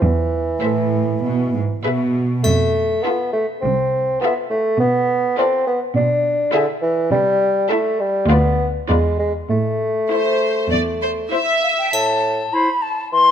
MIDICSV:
0, 0, Header, 1, 10, 480
1, 0, Start_track
1, 0, Key_signature, 0, "minor"
1, 0, Tempo, 603015
1, 21, Time_signature, 4, 2, 24, 8
1, 2421, Tempo, 583658
1, 6741, Tempo, 603622
1, 10733, End_track
2, 0, Start_track
2, 0, Title_t, "Flute"
2, 0, Program_c, 0, 73
2, 9144, Note_on_c, 0, 76, 52
2, 9199, Note_off_c, 0, 76, 0
2, 9393, Note_on_c, 0, 77, 37
2, 9441, Note_off_c, 0, 77, 0
2, 9513, Note_on_c, 0, 79, 51
2, 9625, Note_off_c, 0, 79, 0
2, 9630, Note_on_c, 0, 81, 66
2, 10110, Note_on_c, 0, 83, 58
2, 10122, Note_off_c, 0, 81, 0
2, 10340, Note_on_c, 0, 81, 56
2, 10351, Note_off_c, 0, 83, 0
2, 10572, Note_off_c, 0, 81, 0
2, 10576, Note_on_c, 0, 84, 69
2, 10733, Note_off_c, 0, 84, 0
2, 10733, End_track
3, 0, Start_track
3, 0, Title_t, "Violin section"
3, 0, Program_c, 1, 48
3, 496, Note_on_c, 1, 76, 37
3, 859, Note_off_c, 1, 76, 0
3, 1472, Note_on_c, 1, 76, 41
3, 1829, Note_off_c, 1, 76, 0
3, 2426, Note_on_c, 1, 76, 41
3, 2784, Note_off_c, 1, 76, 0
3, 3402, Note_on_c, 1, 76, 45
3, 3754, Note_off_c, 1, 76, 0
3, 4357, Note_on_c, 1, 74, 47
3, 4706, Note_off_c, 1, 74, 0
3, 5294, Note_on_c, 1, 76, 53
3, 5650, Note_off_c, 1, 76, 0
3, 6252, Note_on_c, 1, 76, 47
3, 6613, Note_off_c, 1, 76, 0
3, 6747, Note_on_c, 1, 74, 53
3, 7099, Note_off_c, 1, 74, 0
3, 7223, Note_on_c, 1, 74, 43
3, 7578, Note_off_c, 1, 74, 0
3, 8188, Note_on_c, 1, 72, 39
3, 8545, Note_off_c, 1, 72, 0
3, 9154, Note_on_c, 1, 72, 43
3, 9515, Note_off_c, 1, 72, 0
3, 10733, End_track
4, 0, Start_track
4, 0, Title_t, "Oboe"
4, 0, Program_c, 2, 68
4, 10111, Note_on_c, 2, 72, 42
4, 10238, Note_off_c, 2, 72, 0
4, 10733, End_track
5, 0, Start_track
5, 0, Title_t, "Violin section"
5, 0, Program_c, 3, 48
5, 493, Note_on_c, 3, 72, 36
5, 858, Note_off_c, 3, 72, 0
5, 1465, Note_on_c, 3, 71, 42
5, 1825, Note_off_c, 3, 71, 0
5, 2426, Note_on_c, 3, 69, 42
5, 2784, Note_off_c, 3, 69, 0
5, 3388, Note_on_c, 3, 69, 40
5, 3746, Note_off_c, 3, 69, 0
5, 4353, Note_on_c, 3, 69, 49
5, 4704, Note_off_c, 3, 69, 0
5, 5297, Note_on_c, 3, 68, 52
5, 5652, Note_off_c, 3, 68, 0
5, 6253, Note_on_c, 3, 69, 48
5, 6614, Note_off_c, 3, 69, 0
5, 6744, Note_on_c, 3, 71, 48
5, 7097, Note_off_c, 3, 71, 0
5, 7215, Note_on_c, 3, 71, 45
5, 7574, Note_off_c, 3, 71, 0
5, 8185, Note_on_c, 3, 72, 37
5, 8636, Note_off_c, 3, 72, 0
5, 8661, Note_on_c, 3, 74, 38
5, 8725, Note_off_c, 3, 74, 0
5, 8907, Note_on_c, 3, 72, 45
5, 8970, Note_off_c, 3, 72, 0
5, 9147, Note_on_c, 3, 76, 44
5, 9624, Note_off_c, 3, 76, 0
5, 10733, End_track
6, 0, Start_track
6, 0, Title_t, "Viola section"
6, 0, Program_c, 4, 48
6, 502, Note_on_c, 4, 69, 37
6, 862, Note_off_c, 4, 69, 0
6, 1477, Note_on_c, 4, 68, 40
6, 1832, Note_off_c, 4, 68, 0
6, 2426, Note_on_c, 4, 65, 37
6, 2784, Note_off_c, 4, 65, 0
6, 3402, Note_on_c, 4, 65, 43
6, 3754, Note_off_c, 4, 65, 0
6, 4347, Note_on_c, 4, 65, 41
6, 4701, Note_off_c, 4, 65, 0
6, 5293, Note_on_c, 4, 64, 48
6, 5650, Note_off_c, 4, 64, 0
6, 6260, Note_on_c, 4, 64, 45
6, 6618, Note_off_c, 4, 64, 0
6, 6739, Note_on_c, 4, 65, 51
6, 7094, Note_off_c, 4, 65, 0
6, 7218, Note_on_c, 4, 65, 43
6, 7575, Note_off_c, 4, 65, 0
6, 8182, Note_on_c, 4, 64, 38
6, 8542, Note_off_c, 4, 64, 0
6, 9153, Note_on_c, 4, 64, 37
6, 9514, Note_off_c, 4, 64, 0
6, 10733, End_track
7, 0, Start_track
7, 0, Title_t, "Clarinet"
7, 0, Program_c, 5, 71
7, 10109, Note_on_c, 5, 64, 43
7, 10236, Note_off_c, 5, 64, 0
7, 10733, End_track
8, 0, Start_track
8, 0, Title_t, "Bassoon"
8, 0, Program_c, 6, 70
8, 15, Note_on_c, 6, 52, 64
8, 1466, Note_off_c, 6, 52, 0
8, 1939, Note_on_c, 6, 57, 57
8, 2410, Note_on_c, 6, 59, 53
8, 2422, Note_off_c, 6, 57, 0
8, 2653, Note_off_c, 6, 59, 0
8, 2658, Note_on_c, 6, 57, 53
8, 2768, Note_off_c, 6, 57, 0
8, 2892, Note_on_c, 6, 60, 65
8, 3373, Note_off_c, 6, 60, 0
8, 3380, Note_on_c, 6, 59, 58
8, 3490, Note_off_c, 6, 59, 0
8, 3621, Note_on_c, 6, 57, 61
8, 3860, Note_off_c, 6, 57, 0
8, 3866, Note_on_c, 6, 59, 73
8, 4335, Note_off_c, 6, 59, 0
8, 4349, Note_on_c, 6, 60, 65
8, 4577, Note_off_c, 6, 60, 0
8, 4582, Note_on_c, 6, 59, 53
8, 4690, Note_off_c, 6, 59, 0
8, 4824, Note_on_c, 6, 62, 72
8, 5286, Note_off_c, 6, 62, 0
8, 5291, Note_on_c, 6, 50, 64
8, 5399, Note_off_c, 6, 50, 0
8, 5528, Note_on_c, 6, 52, 67
8, 5766, Note_off_c, 6, 52, 0
8, 5772, Note_on_c, 6, 55, 78
8, 6249, Note_on_c, 6, 57, 58
8, 6261, Note_off_c, 6, 55, 0
8, 6498, Note_on_c, 6, 55, 58
8, 6510, Note_off_c, 6, 57, 0
8, 6731, Note_on_c, 6, 59, 68
8, 6744, Note_off_c, 6, 55, 0
8, 7046, Note_off_c, 6, 59, 0
8, 7211, Note_on_c, 6, 56, 52
8, 7437, Note_off_c, 6, 56, 0
8, 7455, Note_on_c, 6, 56, 53
8, 7565, Note_off_c, 6, 56, 0
8, 7700, Note_on_c, 6, 57, 58
8, 9125, Note_off_c, 6, 57, 0
8, 9632, Note_on_c, 6, 45, 54
8, 10031, Note_off_c, 6, 45, 0
8, 10581, Note_on_c, 6, 52, 52
8, 10733, Note_off_c, 6, 52, 0
8, 10733, End_track
9, 0, Start_track
9, 0, Title_t, "Cello section"
9, 0, Program_c, 7, 48
9, 21, Note_on_c, 7, 40, 55
9, 400, Note_off_c, 7, 40, 0
9, 496, Note_on_c, 7, 45, 50
9, 951, Note_off_c, 7, 45, 0
9, 987, Note_on_c, 7, 47, 45
9, 1228, Note_off_c, 7, 47, 0
9, 1228, Note_on_c, 7, 44, 46
9, 1292, Note_off_c, 7, 44, 0
9, 1468, Note_on_c, 7, 47, 45
9, 1939, Note_off_c, 7, 47, 0
9, 1946, Note_on_c, 7, 41, 47
9, 2321, Note_off_c, 7, 41, 0
9, 2906, Note_on_c, 7, 36, 52
9, 3289, Note_off_c, 7, 36, 0
9, 3874, Note_on_c, 7, 47, 48
9, 4250, Note_off_c, 7, 47, 0
9, 4830, Note_on_c, 7, 47, 59
9, 5202, Note_off_c, 7, 47, 0
9, 5773, Note_on_c, 7, 48, 61
9, 6153, Note_off_c, 7, 48, 0
9, 6741, Note_on_c, 7, 38, 59
9, 7118, Note_off_c, 7, 38, 0
9, 7217, Note_on_c, 7, 40, 48
9, 7598, Note_off_c, 7, 40, 0
9, 7702, Note_on_c, 7, 45, 45
9, 8085, Note_off_c, 7, 45, 0
9, 8667, Note_on_c, 7, 40, 47
9, 9052, Note_off_c, 7, 40, 0
9, 10733, End_track
10, 0, Start_track
10, 0, Title_t, "Drums"
10, 1943, Note_on_c, 9, 81, 33
10, 2023, Note_off_c, 9, 81, 0
10, 9634, Note_on_c, 9, 81, 36
10, 9713, Note_off_c, 9, 81, 0
10, 10733, End_track
0, 0, End_of_file